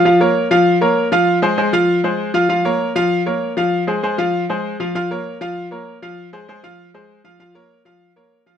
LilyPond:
\new Staff \with { instrumentName = "Grand piano" } { \time 4/4 \key bes \dorian \tempo 4 = 196 <f f' f''>8 <bes bes' des''>4 <f f' f''>4 <bes bes' des''>4 <f f' f''>8~ | <f f' f''>8 <aes aes' c''>8 <aes aes' c''>8 <f f' f''>4 <aes aes' c''>4 <f f' f''>8 | <f f' f''>8 <bes bes' des''>4 <f f' f''>4 <bes bes' des''>4 <f f' f''>8~ | <f f' f''>8 <aes aes' c''>8 <aes aes' c''>8 <f f' f''>4 <aes aes' c''>4 <f f' f''>8 |
<f f' f''>8 <bes bes' des''>4 <f f' f''>4 <bes bes' des''>4 <f f' f''>8~ | <f f' f''>8 <aes aes' c''>8 <aes aes' c''>8 <f f' f''>4 <aes aes' c''>4 <f f' f''>8 | <f f' f''>8 <bes bes' des''>4 <f f' f''>4 <bes bes' des''>4 <f f' f''>8 | }